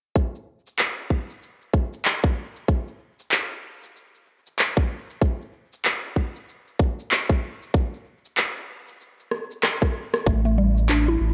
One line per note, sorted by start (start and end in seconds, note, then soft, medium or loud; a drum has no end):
0.16 kick loud
0.16 shaker soft
0.35 shaker soft
0.67 shaker medium
0.79 clap medium
0.79 shaker soft
0.98 shaker soft
1.10 kick medium
1.30 shaker medium
1.43 shaker soft
1.62 shaker soft
1.74 kick medium
1.93 shaker medium
2.05 clap medium
2.05 shaker medium
2.24 kick medium
2.24 shaker soft
2.56 shaker medium
2.68 kick loud
2.68 shaker medium
2.88 shaker soft
3.19 shaker medium
3.32 clap loud
3.32 shaker soft
3.51 shaker soft
3.83 shaker medium
3.96 shaker medium
4.15 shaker soft
4.47 shaker medium
4.59 clap medium
4.59 shaker medium
4.77 kick loud
4.77 shaker soft
5.10 shaker medium
5.22 kick loud
5.22 shaker medium
5.42 shaker soft
5.73 shaker medium
5.85 clap medium
5.85 shaker medium
6.04 shaker soft
6.16 kick medium
6.36 shaker medium
6.49 shaker medium
6.68 shaker soft
6.79 kick medium
6.99 shaker medium
7.11 clap loud
7.11 shaker medium
7.30 kick loud
7.30 shaker soft
7.62 shaker medium
7.74 kick loud
7.74 shaker medium
7.94 shaker soft
8.25 shaker medium
8.37 clap medium
8.37 shaker medium
8.57 shaker soft
8.88 shaker medium
9.01 shaker medium
9.20 shaker soft
9.31 cross-stick medium
9.51 shaker medium
9.63 cross-stick medium
9.63 clap medium
9.63 shaker medium
9.82 kick loud
9.82 cross-stick medium
9.82 shaker soft
10.14 cross-stick medium
10.14 shaker medium
10.26 11.17 A1 loud
10.26 10.43 A3 medium
10.26 kick loud
10.26 shaker soft
10.45 10.57 A3 medium
10.45 shaker soft
10.58 10.69 G3 medium
10.77 shaker medium
10.89 11.06 D4 loud
10.89 clap medium
10.89 shaker medium
11.08 11.34 E4 medium
11.08 shaker soft
11.21 11.34 A1 loud